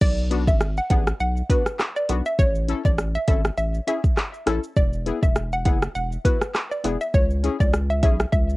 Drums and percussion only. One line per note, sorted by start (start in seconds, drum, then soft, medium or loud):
0.01 kick loud
0.01 crash loud
0.01 shaker medium
0.18 shaker soft
0.31 closed hi-hat medium
0.31 shaker soft
0.47 kick medium
0.47 high bongo medium
0.47 shaker medium
0.60 cross-stick loud
0.60 shaker medium
0.77 shaker medium
0.90 kick medium
0.90 closed hi-hat medium
0.90 low bongo medium
0.90 shaker soft
1.07 cross-stick loud
1.07 shaker medium
1.20 shaker medium
1.37 shaker medium
1.50 kick medium
1.50 closed hi-hat medium
1.50 shaker medium
1.66 cross-stick medium
1.66 shaker medium
1.79 cross-stick medium
1.79 clap medium
1.79 shaker medium
1.96 shaker medium
2.09 closed hi-hat medium
2.09 high bongo medium
2.09 low bongo medium
2.09 shaker medium
2.26 shaker medium
2.39 kick loud
2.39 shaker medium
2.55 shaker medium
2.69 closed hi-hat medium
2.69 shaker soft
2.85 kick medium
2.85 high bongo medium
2.85 shaker medium
2.98 cross-stick loud
2.98 shaker medium
3.15 shaker medium
3.28 kick loud
3.28 closed hi-hat medium
3.28 low bongo medium
3.28 shaker soft
3.45 cross-stick loud
3.45 shaker medium
3.58 shaker medium
3.74 shaker medium
3.88 closed hi-hat medium
3.88 shaker medium
4.04 kick loud
4.04 shaker medium
4.17 cross-stick medium
4.17 clap medium
4.17 shaker medium
4.34 shaker medium
4.47 cross-stick medium
4.47 closed hi-hat medium
4.47 high bongo medium
4.47 low bongo medium
4.47 shaker medium
4.64 shaker medium
4.77 kick loud
4.77 shaker medium
4.93 shaker medium
5.06 closed hi-hat medium
5.06 shaker soft
5.23 kick loud
5.23 high bongo medium
5.23 shaker medium
5.36 cross-stick loud
5.36 shaker medium
5.53 shaker medium
5.65 kick medium
5.65 closed hi-hat medium
5.65 low bongo medium
5.65 shaker soft
5.82 cross-stick loud
5.82 shaker medium
5.95 shaker medium
6.12 shaker medium
6.25 kick loud
6.25 closed hi-hat medium
6.25 shaker medium
6.41 cross-stick loud
6.41 shaker medium
6.55 cross-stick medium
6.55 clap medium
6.55 shaker medium
6.71 shaker medium
6.84 closed hi-hat medium
6.84 high bongo medium
6.84 low bongo medium
6.84 shaker medium
7.01 shaker medium
7.14 kick loud
7.14 shaker medium
7.30 shaker soft
7.44 closed hi-hat medium
7.44 shaker soft
7.60 kick loud
7.60 high bongo medium
7.60 shaker medium
7.73 cross-stick loud
7.73 shaker medium
7.90 shaker medium
8.03 kick medium
8.03 closed hi-hat medium
8.03 low bongo medium
8.03 shaker soft
8.20 cross-stick loud
8.20 shaker medium
8.33 kick loud
8.33 shaker medium
8.50 shaker medium